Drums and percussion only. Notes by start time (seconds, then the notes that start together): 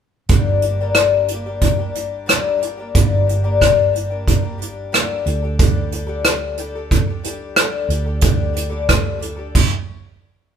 0.29 kick, closed hi-hat
0.62 closed hi-hat
0.95 cross-stick, closed hi-hat
1.28 closed hi-hat
1.61 kick, closed hi-hat
1.95 closed hi-hat
2.29 cross-stick, closed hi-hat
2.62 closed hi-hat
2.95 kick, closed hi-hat
3.29 closed hi-hat
3.61 kick, cross-stick, closed hi-hat
3.95 closed hi-hat
4.28 kick, closed hi-hat
4.62 closed hi-hat
4.94 cross-stick, closed hi-hat
5.26 closed hi-hat
5.59 kick, closed hi-hat
5.92 closed hi-hat
6.25 cross-stick, closed hi-hat
6.57 closed hi-hat
6.91 kick, closed hi-hat
7.24 closed hi-hat
7.56 cross-stick, closed hi-hat
7.90 closed hi-hat
8.21 kick, closed hi-hat
8.56 closed hi-hat
8.89 kick, cross-stick, closed hi-hat
9.22 closed hi-hat
9.55 kick, crash